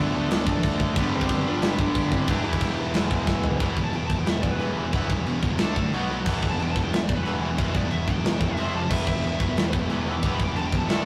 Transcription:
Already playing: D2 D3 F3 A3 B3 D4 F4 A4 D5 A5
0.00 D4
0.15 D2
0.29 D2 D3 A3 D4, snare, crash
0.47 D2, kick
0.63 D2, kick, crash
0.79 D2, kick
0.95 G1 G2 D3 G3 B3 D4 G4 B4 B5, kick, crash
1.01 D4
1.15 G1 C4 G4
1.21 kick
1.29 G1, kick, crash
1.46 G1 D4 F4
1.61 G1 G2 D3 G3 E4, snare, crash
1.65 G4
1.78 G1 D4 G4, kick
1.95 G1, kick, crash
2.11 G1 C4 E4, kick
2.27 E1 E2 B2 E3 B3 D4 E4 G4 E5, kick, crash
2.44 E1 E4 G4
2.53 kick
2.61 E1, kick, crash
2.79 E1
2.94 E1 E2 B2 E3, snare, crash
3.11 E1, kick
3.27 E1, kick, snare
3.44 E1, floor tom
3.60 E1 E2 B2 E3 G3 B3 E4, kick, china
3.77 E1 E2 B2, kick
3.84 E2 B2 A5
3.93 E1 E2 B2 G5, china
4.07 E1 B2 A5, kick
4.11 E2
4.18 E2 B2 G5
4.26 E1 E2 B2 E5, snare, china
4.41 E1 E2 B2 D5, kick
4.51 E2 B2 B4
4.59 E1 E2 B2 E3, china
4.77 E1 E2 B2 E3
4.85 E2 B2
4.93 E1 E2 B2 E3 G3 B3 E4, kick, china
5.10 E1 E2 B2, kick
5.19 E2 B2
5.26 E1 E2 B2, china
5.43 E1 E2 B2, kick
5.52 E2 B2
5.58 D2 D3 A3 D4 A4, snare, china
5.76 A1 D3 A3, kick
5.84 D3 A3
5.92 B1 B2 F#3 B3 F#4, china
6.09 B1 B2 F#3 B3
6.17 B2 F#3
6.24 E1 E2 B2 E3 G3 B3, kick, china, crash
6.28 E4
6.42 E1 E2 B2, kick
6.50 E2 B2 A5
6.59 E1 E2 B2 G5, china
6.71 A5
6.75 E1 E2 B2, kick
6.83 E2 B2 G5
6.91 E1 E2 B2 E5, snare, china
7.04 D5
7.08 E1 E2 B2, kick
7.15 E2 B2 B4
7.25 E1 E2 B2 E3, china
7.42 E1 E2 B2 E3
7.51 E2 B2
7.57 E1 E2 B2 E3 G3 B3 E4, kick, china
7.74 E1 E2 B2 D5, kick
7.83 E2 B2
7.91 E1 E2 B2 E5, china
8.06 E1 E2 B2 G5, kick
8.16 E2 B2
8.24 E1 E2 B2, snare, china
8.41 E1 E2 B2, kick
8.50 E2 B2
8.56 F1 F2 C3 F3 C4 F4 C5 E5, china
8.74 F1 F2 C3 F3 A5
8.81 F2 C3
8.90 E1 E2 B2 E3 B3 E4 G4 B4 E5 G5 B5, kick, china, crash
8.94 B4
9.07 E1 E2 B2 E5, kick
9.16 E2 B2
9.23 E1 E2 B2, china
9.40 E1 E2 B2, kick
9.48 E2 B2
9.57 E1 E2 B2, snare, china
9.73 E1 E2 B2, kick
9.82 E2 B2
9.89 E1 E2 B2 E3, china
10.07 E1 E2 B2 E3
10.12 B2 D6
10.16 E2
10.22 E1 E2 B2 E3 B3 E4 G4 B4, kick, china
10.35 B5
10.39 E1 E2 B2, kick
10.45 E2 B2 D6
10.56 E1 E2 B2 A5, china
10.67 G5
10.72 C#2 E2 B2, kick
10.78 A5
10.82 E2 B2
10.88 D2 D3 A3 D4 A4 E5 A5 D6, snare, china
10.92 A4
11.00 D5

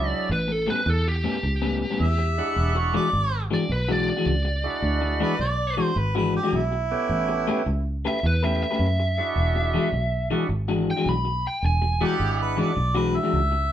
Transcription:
Already playing: C#2 F#3 G#3 D4 E4 E5
0.09 D5
0.29 A1 B4
0.48 A4, muted clean electric guitar stroke
0.67 A2 G3 B3 C#4 B4
0.86 E2 A4, muted clean electric guitar stroke
1.08 G4
1.24 A2 G3 B3 C#4
1.43 C#2, muted clean electric guitar stroke
1.62 A2 G3 B3 C#4
1.90 A2 G3 B3 C#4
2.00 E2 E5
2.18 muted clean electric guitar stroke
2.38 G#3 D4 E4 F#5
2.56 E1
2.75 C#5, muted clean electric guitar stroke
2.94 E3 G#3 D4 F#4 D5
3.13 G#1, muted clean electric guitar stroke
3.51 E3 G#3 D4 F#4 D5
3.69 B1 B4, muted clean electric guitar stroke
3.88 E3 G#3 D4 F#4 D5
4.09 D5
4.17 E3 G#3 D4 F#4
4.26 C#2
4.45 muted clean electric guitar stroke
4.64 G#3 D4 E4 F#4
4.82 D2
5.01 muted clean electric guitar stroke
5.20 E3 G#3 D4 F#4 B4
5.39 B1 D5, muted clean electric guitar stroke
5.77 E3 G#3 D4 F#4
5.84 C5
5.96 G#1 B4, muted clean electric guitar stroke
6.15 E3 G#3 D4 F#4 B4
6.36 G4
6.43 E3 G#3 D4 F#4
6.53 B1 E4
6.72 muted clean electric guitar stroke
6.91 A3 B3 C#4 G4
7.09 A1
7.29 muted clean electric guitar stroke
7.48 A3 C#4 G4 B4
7.66 C#2, muted clean electric guitar stroke
8.05 A3 C#4 G4 B4 E5
8.23 E2 B4, muted clean electric guitar stroke
8.43 A3 C#4 G4 B4 E5
8.63 E5
8.71 A3 C#4 G4 B4
8.79 F#2
9.00 muted clean electric guitar stroke
9.18 G#3 D4 E4 F#4
9.36 E1
9.55 muted clean electric guitar stroke
9.74 E3 G#3 D4 F#4
9.92 B1, muted clean electric guitar stroke
10.31 E3 G#3 D4 E4 F#4
10.49 G#1, muted clean electric guitar stroke
10.68 E3 G#3 D4 F#4
10.91 G5
10.96 E3 G#3 D4 F#4
11.06 B1 B5
11.25 muted clean electric guitar stroke
11.47 G5
11.62 E1 G#5
11.82 muted clean electric guitar stroke
12.01 E3 G#3 D4 E4 F#4 G4 F#5
12.20 G#1, muted clean electric guitar stroke
12.42 B4
12.57 E3 G#3 D4 F#4 D5
12.76 B1, muted clean electric guitar stroke
12.95 E3 G#3 D4 F#4 B4
13.16 E5
13.23 E3 G#3 D4 F#4
13.33 C#2
13.52 muted clean electric guitar stroke

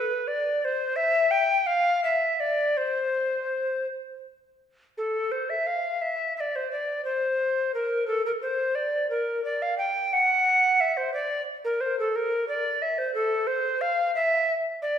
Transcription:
Already playing: B4
0.27 D5
0.61 C5 D5
0.96 E5
1.31 G5
1.67 F5
2.04 E5
2.40 D5
2.77 C5
4.98 A4
5.32 C5
5.50 E5
5.67 F5
6.01 E5
6.36 D5 E5
6.56 C5
6.71 D5
7.05 C5
7.74 A#4
8.07 A4
8.26 A#4
8.42 C5
8.75 D5
9.10 A#4
9.44 D5
9.62 F5
9.78 G5
10.13 F#5
10.80 E5
10.97 C5
11.14 D5
11.65 A#4
11.81 C5
11.99 A4
12.16 A#4
12.48 D5
12.82 E5
12.98 C5
13.15 A4
13.47 C5
13.81 F5
14.15 E5
14.82 D5

